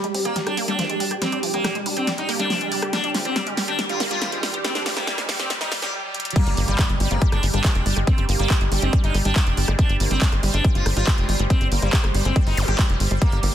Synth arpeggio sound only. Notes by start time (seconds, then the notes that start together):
0.04 G#3
0.14 G3
0.25 G4
0.36 G3
0.47 G3
0.57 A#3
0.68 G3
0.79 F3
0.89 G#3
1.00 G3
1.11 G4
1.22 G3
1.32 D4
1.43 F3
1.54 G3
1.64 G3
1.75 G#3
1.86 G3
1.97 G4
2.07 G3
2.18 G3
2.29 A#3
2.40 G3
2.50 F3
2.61 G#3
2.72 G3
2.82 G4
2.93 G3
3.04 D4
3.15 F3
3.25 G3
3.36 G3
3.47 G#3
3.57 G3
3.68 G4
3.79 G3
3.90 G3
4.00 A#3
4.11 G3
4.22 F3
4.32 G#3
4.43 G3
4.54 G4
4.65 G3
4.75 D4
4.86 F3
4.97 G3
5.07 G3
5.18 G#3
5.29 G3
5.39 G4
5.50 G3
5.61 G3
5.72 G3
5.82 G3
6.36 G3
6.47 G3
6.57 A#3
6.68 G3
6.79 G3
6.89 G#3
7.00 G3
7.11 G#3
7.22 G3
7.32 G#3
7.43 G3
7.54 G3
7.64 G3
7.75 G#3
7.86 G3
7.97 G#3
8.07 G3
8.18 G3
8.29 A#3
8.39 G3
8.50 G3
8.61 G#3
8.72 G3
8.82 G#3
8.93 G3
9.04 G#3
9.14 G3
9.25 G3
9.36 G3
9.47 G#3
9.57 G3
9.68 G#3
9.79 G3
9.89 G3
10.00 A#3
10.11 G3
10.22 G3
10.32 G#3
10.43 G3
10.54 G#3
10.64 G3
10.75 G#3
10.86 G3
10.97 G3
11.07 G3
11.18 G#3
11.29 G3
11.40 G#3
11.50 G3
11.61 G3
11.72 A#3
11.82 G3
11.93 G3
12.04 G#3
12.14 G3
12.25 G#3
12.36 G3
12.47 G#3
12.57 G3
12.68 G3
12.79 G3
12.89 G#4
13.00 G3
13.11 G3
13.22 G3
13.32 G3
13.43 A#3